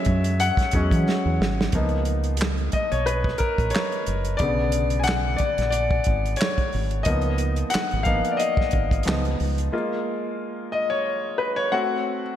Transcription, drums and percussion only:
0.05 kick medium
0.05 closed hi-hat medium
0.24 closed hi-hat medium
0.40 closed hi-hat medium
0.57 kick medium
0.57 snare soft
0.57 closed hi-hat soft
0.71 kick medium
0.71 closed hi-hat medium
0.91 kick medium
0.91 closed hi-hat medium
1.09 snare medium
1.42 snare medium
1.61 snare medium
1.72 kick loud
1.72 closed hi-hat medium
1.89 closed hi-hat soft
2.05 closed hi-hat medium
2.24 closed hi-hat soft
2.37 closed hi-hat medium
2.41 snare loud
2.41 clap medium
2.58 closed hi-hat soft
2.72 kick medium
2.72 closed hi-hat medium
2.92 closed hi-hat soft
3.07 closed hi-hat medium
3.24 kick medium
3.24 snare soft
3.38 kick medium
3.38 closed hi-hat medium
3.58 kick medium
3.58 closed hi-hat soft
3.70 closed hi-hat medium
3.75 snare medium
3.75 clap medium
3.92 closed hi-hat soft
4.06 closed hi-hat medium
4.25 closed hi-hat soft
4.39 kick loud
4.39 closed hi-hat medium
4.72 closed hi-hat medium
4.90 closed hi-hat soft
5.04 closed hi-hat medium
5.08 snare loud
5.08 clap medium
5.38 kick medium
5.38 closed hi-hat medium
5.58 snare soft
5.58 closed hi-hat soft
5.72 closed hi-hat medium
5.91 kick medium
6.04 kick medium
6.04 closed hi-hat medium
6.26 closed hi-hat soft
6.36 closed hi-hat medium
6.41 snare medium
6.41 clap medium
6.58 kick medium
6.58 closed hi-hat soft
6.73 open hi-hat soft
6.91 closed hi-hat soft
7.05 kick loud
7.05 closed hi-hat medium
7.21 closed hi-hat soft
7.38 closed hi-hat medium
7.56 closed hi-hat soft
7.70 closed hi-hat medium
7.75 snare medium
7.75 clap medium
7.91 closed hi-hat soft
8.05 kick medium
8.05 closed hi-hat medium
8.25 closed hi-hat medium
8.40 closed hi-hat medium
8.57 kick loud
8.57 snare soft
8.71 kick medium
8.71 closed hi-hat medium
8.91 kick medium
8.91 closed hi-hat soft
9.03 closed hi-hat medium
9.08 snare loud
9.08 clap medium
9.25 closed hi-hat soft
9.40 open hi-hat soft
9.58 closed hi-hat soft

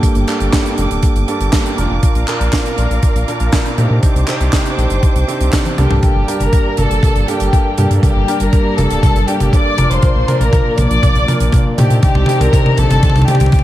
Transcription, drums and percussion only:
0.03 kick loud
0.03 closed hi-hat loud
0.15 closed hi-hat medium
0.28 clap medium
0.28 closed hi-hat medium
0.40 closed hi-hat medium
0.53 kick loud
0.53 snare loud
0.53 clap medium
0.53 closed hi-hat medium
0.66 closed hi-hat soft
0.78 closed hi-hat medium
0.91 closed hi-hat medium
1.03 kick loud
1.03 closed hi-hat loud
1.16 closed hi-hat medium
1.28 closed hi-hat medium
1.41 closed hi-hat medium
1.53 kick loud
1.53 snare loud
1.53 clap medium
1.53 closed hi-hat loud
1.66 closed hi-hat medium
1.78 closed hi-hat medium
2.03 kick loud
2.03 closed hi-hat loud
2.15 closed hi-hat medium
2.28 clap medium
2.28 closed hi-hat medium
2.41 closed hi-hat medium
2.53 kick loud
2.53 snare loud
2.53 clap medium
2.53 closed hi-hat loud
2.66 closed hi-hat medium
2.78 closed hi-hat medium
2.91 closed hi-hat medium
3.03 kick loud
3.03 closed hi-hat medium
3.16 closed hi-hat medium
3.28 closed hi-hat medium
3.40 closed hi-hat medium
3.52 kick loud
3.52 snare loud
3.52 clap medium
3.52 closed hi-hat loud
3.66 closed hi-hat medium
3.78 closed hi-hat medium
4.03 kick loud
4.03 closed hi-hat loud
4.16 closed hi-hat medium
4.27 clap medium
4.27 closed hi-hat medium
4.41 closed hi-hat medium
4.53 kick loud
4.53 snare loud
4.53 clap medium
4.53 closed hi-hat loud
4.66 closed hi-hat medium
4.79 closed hi-hat medium
4.90 closed hi-hat medium
5.03 kick loud
5.03 closed hi-hat medium
5.16 closed hi-hat medium
5.29 closed hi-hat medium
5.41 closed hi-hat medium
5.53 kick loud
5.53 snare loud
5.53 clap loud
5.53 closed hi-hat loud
5.65 closed hi-hat medium
5.65 high tom soft
5.78 closed hi-hat medium
5.78 mid tom medium
5.91 mid tom medium
6.03 kick loud
6.03 closed hi-hat medium
6.03 mid tom soft
6.28 closed hi-hat medium
6.40 closed hi-hat medium
6.40 mid tom soft
6.53 kick loud
6.53 closed hi-hat medium
6.77 closed hi-hat medium
6.77 mid tom medium
6.91 closed hi-hat medium
7.03 kick loud
7.03 closed hi-hat loud
7.03 mid tom medium
7.16 closed hi-hat medium
7.28 closed hi-hat medium
7.40 closed hi-hat medium
7.53 kick loud
7.53 closed hi-hat medium
7.78 closed hi-hat medium
7.78 mid tom medium
7.91 closed hi-hat medium
8.03 kick loud
8.03 closed hi-hat medium
8.03 mid tom medium
8.28 closed hi-hat medium
8.40 closed hi-hat medium
8.53 kick loud
8.53 closed hi-hat medium
8.78 closed hi-hat medium
8.78 mid tom medium
8.90 closed hi-hat medium
9.03 kick loud
9.03 closed hi-hat medium
9.03 mid tom medium
9.16 closed hi-hat soft
9.28 closed hi-hat medium
9.40 closed hi-hat medium
9.40 mid tom medium
9.53 kick loud
9.53 closed hi-hat medium
9.78 closed hi-hat loud
9.78 mid tom medium
9.91 closed hi-hat medium
10.02 kick loud
10.02 closed hi-hat medium
10.02 mid tom medium
10.28 closed hi-hat medium
10.28 mid tom medium
10.41 closed hi-hat medium
10.53 kick loud
10.53 closed hi-hat medium
10.53 mid tom medium
10.78 closed hi-hat loud
10.78 mid tom medium
10.91 closed hi-hat medium
11.03 kick loud
11.03 closed hi-hat medium
11.03 mid tom medium
11.15 closed hi-hat soft
11.28 closed hi-hat medium
11.28 mid tom medium
11.40 closed hi-hat medium
11.52 kick loud
11.52 closed hi-hat loud
11.52 mid tom medium
11.78 closed hi-hat medium
11.78 mid tom medium
11.90 closed hi-hat medium
12.03 kick loud
12.03 closed hi-hat medium
12.03 mid tom medium
12.15 mid tom medium
12.26 closed hi-hat medium
12.26 mid tom medium
12.41 closed hi-hat medium
12.41 mid tom medium
12.53 kick loud
12.53 closed hi-hat medium
12.53 mid tom medium
12.66 mid tom medium
12.77 closed hi-hat medium
12.77 mid tom medium
12.90 closed hi-hat medium
12.90 mid tom medium
13.03 kick loud
13.03 closed hi-hat medium
13.03 mid tom loud
13.10 mid tom loud
13.16 closed hi-hat soft
13.16 mid tom medium
13.22 mid tom medium
13.28 closed hi-hat medium
13.28 mid tom loud
13.35 mid tom loud
13.40 closed hi-hat medium
13.40 mid tom loud
13.46 mid tom medium
13.52 kick loud
13.52 closed hi-hat medium
13.52 mid tom loud
13.59 mid tom medium

